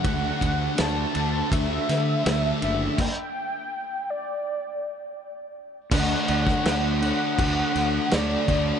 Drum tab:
CC |----------------|x---------------|x-x-x-x-x-x-x-x-|
RD |x-x-x-x-x-x-x-x-|----------------|----------------|
SD |----o-----o-o---|----------------|---oo-------o---|
BD |o-o-----o-------|o---------------|o--o----o-----o-|